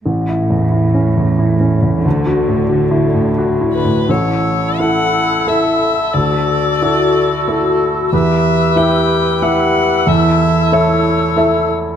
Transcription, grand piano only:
\new Staff \with { instrumentName = "Grand piano" } { \time 3/4 \key a \mixolydian \tempo 4 = 91 \tuplet 3/2 { a,,8 e'8 e,8 e'8 cis'8 e,8 e'8 cis'8 e,8 } | \tuplet 3/2 { d,8 fis'8 a,8 fis'8 e'8 a,8 fis'8 e'8 a,8 } | a,,4 <e' a'>4 <e' a'>4 | d,4 <e' fis' a'>4 <e' fis' a'>4 |
e,4 <e' g' e''>4 <e' g' e''>4 | e,4 <e' a' e''>4 <e' a' e''>4 | }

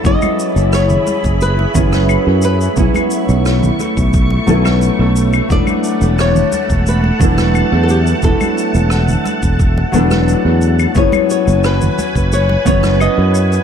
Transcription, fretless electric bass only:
\new Staff \with { instrumentName = "Fretless electric bass" } { \clef bass \time 4/4 \key fis \phrygian \tempo 4 = 88 fis,,16 r8 fis,,8 r8 fis,,8 r16 fis,,8 r16 fis,8 r16 | b,,16 r8 b,,8 r8 b,,8 r16 b,,8 r16 b,,8 r16 | e,,16 r8 e,,8 r8 e,,8 r16 e,,8 r16 e,8 r16 | e,,16 r8 e,,8 r8 e,,8 r16 e,,8 r16 e,8 r16 |
fis,,16 r8 fis,,8 r8 fis,,8 r16 fis,,8 r16 fis,8 r16 | }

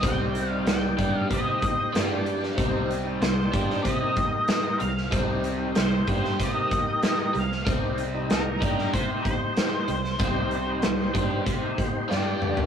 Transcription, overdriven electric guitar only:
\new Staff \with { instrumentName = "Overdriven electric guitar" } { \time 4/4 \key c \minor \tempo 4 = 94 <c g c'>4 <c g>8 <g d' g'>8 <c' g' c''>8 r8 <g d' g'>4 | <c g c'>4 <c g>8 <g d' g'>8 <c' g' c''>8 r4 <c g>8 | <c g c'>4 <c g>8 <g d' g'>8 <c' g' c''>8 r4 <c g>8 | <c g c'>4 <c g>8 <g d' g'>8 <c' g' c''>8 r4 <c g>8 |
<c g c'>4 <c g>8 <g d' g'>8 <c' g' c''>8 r8 <g d' g'>4 | }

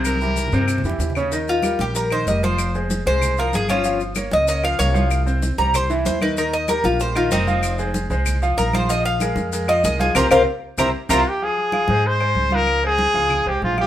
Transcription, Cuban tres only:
\new Staff \with { instrumentName = "Cuban tres" } { \time 4/4 \key f \minor \tempo 4 = 190 << { r1 | r8 f'4 g'8 bes'8 c''8 ees''8 c''8~ | c''8 r4 c''4 bes'8 aes'8 f'8~ | f'8 r4 ees''8 ees''8 f''8 f''4~ |
f''4 r8 bes''8 c''8 r8 c''8 b'8 | bes'8 ees''8 bes'8 f'8 c''8 f'8 ees'4~ | ees'4 r2 bes'8 c''8 | ees''8 f''2 ees''8 ees''8 aes'8 |
<bes' c'' f''>8 <bes' c'' f''>8 r4 <bes' c'' e''>8 r8 <bes' c'' e''>8 r8 | r1 | r1 | } \\ { r1 | r1 | r2. r8 des'8~ | des'8 r2 r8 des''4 |
r1 | r2. c'4~ | c'4 r2. | r1 |
r1 | r1 | r1 | } >> }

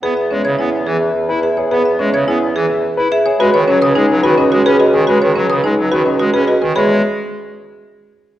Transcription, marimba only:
\new Staff \with { instrumentName = "Marimba" } { \time 3/4 \key e \major \tempo 4 = 107 gis'16 e''16 cis'16 cis''16 e'16 r16 gis'16 r8. gis'16 cis''16 | gis'16 e''16 cis'16 cis''16 e'16 r16 gis'16 r8. gis'16 cis''16 | fis'16 cis''16 cis'16 b'16 dis'16 r16 fis'16 cis'16 fis'16 gis'16 fis'16 b'16 | fis'16 cis''16 cis'16 b'16 dis'16 r16 fis'16 cis'16 fis'16 gis'16 fis'16 b'16 |
gis'8 r2 r8 | }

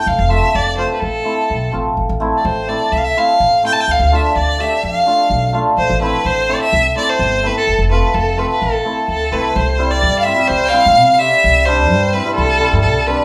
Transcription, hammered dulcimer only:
\new Staff \with { instrumentName = "Hammered dulcimer" } { \time 4/4 \key c \major \tempo 4 = 127 r8 <a c' f'>16 r8. <a c' f'>16 r8. <a c' e'>16 r8. <a c' f'>16 r16 | r8 <a c' e'>16 r8. <a c' e'>16 r8. <a c' e'>16 r8. <a c' e'>16 r16 | r8 <a d' f'>16 r8. <a d' g'>16 r8. <a d' f'>16 r8. <a d' f'>16 r16 | r8 <a c' e'>16 r8. <a c' e'>16 r8. <a c' e'>16 r8. <a c' e'>16 r16 |
r8 <a c' f'>16 r8. <a c' f'>16 r8. <a c' e'>16 r8. <a c' e'>16 r16 | r8 <g c' e'>16 r8. <c' e'>16 <g c' g'>16 r8 <g c' e'>16 r8. <g c' g'>16 r16 | r8 <g c' d'>16 r8. <c' e'>16 <g c' e'>16 r8 <g c' e'>16 r8. <g c' d'>16 r16 | }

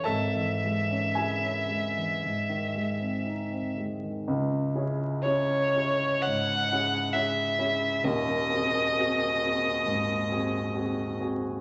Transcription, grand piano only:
\new Staff \with { instrumentName = "Grand piano" } { \time 4/4 \key cis \minor \tempo 4 = 62 << { <a' a''>4 <gis' gis''>2~ <gis' gis''>8 r8 | r1 | r1 | } \\ { <gis,, gis,>16 e16 gis16 cis'16 e'16 cis'16 gis16 e16 gis,16 dis16 gis16 bis16 dis'16 bis16 gis16 dis16 | cis,8 <cis' e' gis'>8 <cis' e' gis'>8 <cis' e' gis'>8 gis,8 <cis' e' gis'>8 <cis' e' gis'>8 <cis' e' gis'>8 | <dis,, dis,>8 <bis fis' gis'>8 <bis fis' gis'>8 <bis fis' gis'>8 gis,8 <bis fis' gis'>8 <bis fis' gis'>8 <bis fis' gis'>8 | } >> }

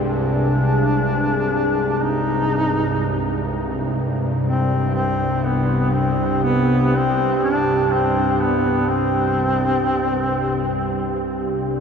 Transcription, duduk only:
\new Staff \with { instrumentName = "Duduk" } { \time 4/4 \key aes \lydian \tempo 4 = 61 d'2 ees'4. r8 | r8 c'8 c'8 b8 c'8 b8 c'8 d'8 | c'8 b8 c'2~ c'8 r8 | }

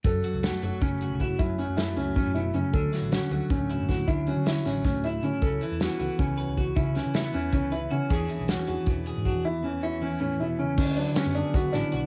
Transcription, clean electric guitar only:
\new Staff \with { instrumentName = "Clean electric guitar" } { \clef bass \time 7/8 \key fis \minor \tempo 4 = 157 << { r4 a4. fis'8 e'8 | r4 a2~ a8~ | a4 cis'4. e'8 e'8 | r4 cis'4. e'8 e'8 |
r4 b4. b'8 fis'8 | r4 a16 b4~ b16 b'8 fis'8 | <e cis' d' gis'>4 cis'4. gis'8 d'8 | r4 cis'2~ cis'8 |
r4 b8 gis'8 b8 e'8 fis'8 | } \\ { fis,8 fis4 fis8 cis4. | fis,8 fis4 fis8 a,8 b,8 cis8 | d8 fis4 fis8 a,4. | d8 fis4 fis8 a,4. |
cis8 e4 e8 cis4. | cis8 e4 e8 cis4. | e,8 e4 e8 b,4. | e,8 e4 e8 a,8 b,8 cis8 |
d8 fis2. | } >> }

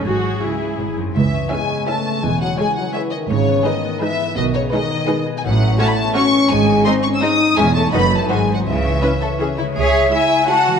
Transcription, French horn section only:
\new Staff \with { instrumentName = "French horn section" } { \clef bass \time 3/4 \key cis \minor \tempo 4 = 168 r2. | e4 gis4 a4 | gis8 fis8 gis8 fis8 e8 dis8 | cis4 dis4 e4 |
dis8 cis8 dis4. r8 | fis4 a4 cis'4 | gis4 bis8 cis'8 dis'4 | gis8 a8 \tuplet 3/2 { b4 a8 gis4 fis8 } |
e2~ e8 r8 | r2. | }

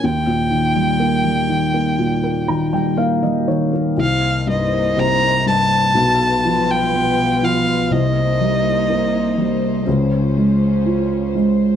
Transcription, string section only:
\new Staff \with { instrumentName = "String section" } { \time 4/4 \key c \phrygian \tempo 4 = 61 << { r1 | c''2 <b, b'>2 | c''1 | } \\ { r1 | <bes ees'>2 <g f'>2 | <bes ees'>2 <f des'>2 | } >> }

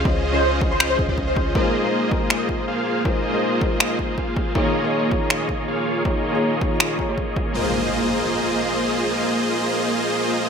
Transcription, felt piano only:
\new Staff \with { instrumentName = "Felt piano" } { \time 4/4 \key aes \major \tempo 4 = 160 <des des' f' c'' ees''>8. <des des' f' c'' ees''>8. <des des' f' c'' ees''>16 r8. <des des' f' c'' ees''>4. | <aes ees' f' bes' c''>8. <aes ees' f' bes' c''>8. <aes ees' f' bes' c''>16 r2 r16 | <aes ees' f' bes' c''>8. <aes ees' f' bes' c''>8. <aes ees' f' bes' c''>16 r2 r16 | <ees ees' f' aes' des''>8. <ees ees' f' aes' des''>8. <ees ees' f' aes' des''>16 r2 r16 |
<ees ees' f' aes' des''>8. <ees ees' f' aes' des''>8. <ees ees' f' aes' des''>16 r8. <ees ees' f' aes' des''>4. | <aes ees' f' bes' c''>1~ | <aes ees' f' bes' c''>1 | }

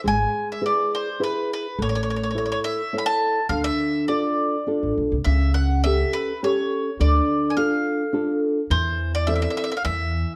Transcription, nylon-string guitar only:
\new Staff \with { instrumentName = "Nylon-string guitar" } { \time 3/4 \key d \dorian \tempo 4 = 104 gis4 <e' gis' b'>4 <e' gis' b'>4 | a4 <e' a' cis''>4 <e' a' cis''>4 | d4 <d' f' a'>4 <d' f' a'>4 | cis4 <cis' g' a'>4 <cis' g' a'>4 |
d4 <d' f' a'>4 <d' f' a'>4 | e4 <c' e' a'>4 e4 | }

